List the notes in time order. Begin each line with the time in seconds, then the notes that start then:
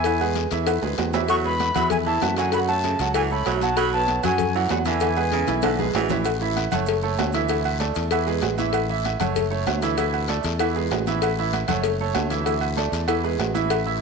Already playing: E2 G#5
0.04 E3 E4 E5, cowbell, high conga, low agogo, long guiro, maracas
0.20 G#3 G#4 B4, high conga, low agogo, maracas
0.35 cowbell, high conga, low timbale, short guiro, maracas
0.51 E2 E3 E4 E5, cowbell, high conga, short guiro, maracas
0.67 cowbell, high conga, high timbale, low agogo, long guiro, maracas
0.82 D2 G#3 G#4 B4, high conga, low timbale, maracas
0.98 E2, cowbell, high conga, low timbale, low agogo, short guiro, maracas
1.13 E3 E4 E5, high conga, low timbale, low agogo, short guiro, maracas
1.28 F#3 C#6, cowbell, low agogo, long guiro, maracas
1.44 G#3 G#4 B4 B5, high conga, maracas
1.60 cowbell, high conga, low timbale, low agogo, short guiro, maracas
1.75 E2 E3 F#3 E4 E5, cowbell, high conga, low conga, low agogo, short guiro, maracas
1.90 G#5, cowbell, high conga, low conga, long guiro, maracas
2.06 E3 E4 E5 A5, high conga, maracas
2.22 F#2, cowbell, high conga, low timbale, low agogo, short guiro, maracas
2.36 D3 F#3 F#4 F#5 G#5, cowbell, short guiro, maracas
2.52 F#3 F#4 F#5 B5, cowbell, high conga, low agogo, long guiro, maracas
2.68 A3 A4 C#5 A5, high conga, low agogo, maracas
2.84 C#3, cowbell, high conga, low timbale, short guiro, maracas
2.99 C#2 F#3 F#4 F#5, cowbell, high conga, short guiro, maracas
3.14 E3 G#5, cowbell, high conga, low agogo, long guiro, maracas
3.30 A3 A4 C#5 B5, high conga, maracas
3.46 B1 F#3, cowbell, high conga, low timbale, low agogo, short guiro, maracas
3.61 F#3 F#4 F#5 A5, high conga, low agogo, short guiro, maracas
3.77 F#3 B5, cowbell, high conga, low agogo, long guiro, maracas
3.92 B3 B4 C#5 A5, high conga, maracas
4.08 cowbell, high conga, low timbale, low agogo, short guiro, maracas
4.23 F#2 F#3 F#4 F#5 G#5, cowbell, high conga, low conga, low agogo, short guiro, maracas
4.38 cowbell, high conga, low conga, long guiro, maracas
4.55 E3 F#3 F#4 F#5, high conga, maracas
4.69 E2 F#5, cowbell, high conga, low timbale, low agogo, short guiro, maracas
4.85 D3 E3 E4 E5 G#5, cowbell, high conga, short guiro, maracas
5.00 E3 E4 E5, cowbell, high conga, low agogo, long guiro, maracas
5.16 G#3 G#4 B4, high conga, low agogo, maracas
5.32 C#3, cowbell, high conga, low timbale, short guiro, maracas
5.47 B1 E3 E4 E5, cowbell, high conga, short guiro, maracas
5.62 D3, cowbell, high conga, high timbale, low agogo, long guiro, maracas
5.79 G#3 G#4 B4, low conga, maracas
5.94 A1 E3, cowbell, low timbale, low agogo, short guiro, maracas
6.09 E3 E4 E5, low conga, low timbale, low agogo, short guiro, maracas
6.25 cowbell, high conga, low agogo, long guiro, maracas
6.41 E3 E4 E5, high conga, maracas
6.56 cowbell, high conga, low timbale, low agogo, short guiro, maracas
6.71 F#1 A3 A4 C#5, cowbell, high conga, low conga, low agogo, short guiro, maracas
6.86 cowbell, high conga, long guiro, maracas
7.02 A3 A4 C#5, high conga, maracas
7.17 D2, cowbell, high conga, low timbale, low agogo, short guiro, maracas
7.32 E3 E4 E5, cowbell, short guiro, maracas
7.48 E3 E4 E5, cowbell, high conga, low agogo, long guiro, maracas
7.64 high conga, low agogo, maracas
7.79 A3 A4 D5, cowbell, high conga, low timbale, short guiro, maracas
7.95 E2, cowbell, high conga, short guiro, maracas
8.11 E3 E4 E5, cowbell, high conga, low agogo, long guiro, maracas
8.27 G#3 G#4 B4, high conga, maracas
8.42 A1, cowbell, high conga, low timbale, low agogo, short guiro, maracas
8.58 E3 E4 E5, high conga, low agogo, short guiro, maracas
8.73 cowbell, high conga, low agogo, long guiro, maracas
8.89 E3 E4 E5, high conga, maracas
9.05 cowbell, high conga, low timbale, low agogo, short guiro, maracas
9.20 F#1 A3 A4 C#5, cowbell, high conga, low conga, low agogo, short guiro, maracas
9.36 cowbell, high conga, low conga, long guiro, maracas
9.51 A3 A4 C#5, high conga, maracas
9.67 D2, cowbell, high conga, low timbale, low agogo, short guiro, maracas
9.82 E3 E4 E5, cowbell, short guiro, maracas
9.97 E3 E4 E5, cowbell, high conga, low agogo, long guiro, maracas
10.14 high conga, low agogo, maracas
10.28 A3 A4 D5, cowbell, high conga, low timbale, short guiro, maracas
10.43 E2, cowbell, high conga, short guiro, maracas
10.59 E3 E4 E5, cowbell, high conga, low agogo, long guiro, maracas
10.75 G#3 G#4 B4, high conga, maracas
10.91 A1, cowbell, high conga, low timbale, low agogo, short guiro, maracas
11.07 E3 E4 E5, high conga, low agogo, short guiro, maracas
11.22 cowbell, low agogo, long guiro, maracas
11.38 E3 E4 E5, high conga, maracas
11.53 cowbell, high conga, low timbale, low agogo, short guiro, maracas
11.68 F#1 A3 A4 C#5, cowbell, high conga, low conga, low agogo, short guiro, maracas
11.84 cowbell, high conga, long guiro, maracas
12.00 A3 A4 C#5, high conga, maracas
12.15 D2, cowbell, high conga, low timbale, low agogo, short guiro, maracas
12.30 E3 E4 E5, cowbell, short guiro, maracas
12.45 E3 E4 E5, cowbell, low agogo, long guiro, maracas
12.61 high conga, low agogo, maracas
12.77 A3 A4 D5, cowbell, high conga, low timbale, short guiro, maracas
12.92 E2, cowbell, high conga, short guiro, maracas
13.08 E3 E4 E5, cowbell, high conga, low agogo, long guiro, maracas
13.24 G#3 G#4 B4, high conga, maracas
13.39 A1, cowbell, high conga, low timbale, low agogo, short guiro, maracas
13.54 E3 E4 E5, high conga, low agogo, short guiro, maracas
13.70 cowbell, low agogo, long guiro, maracas
13.86 E3 E4 E5, high conga, maracas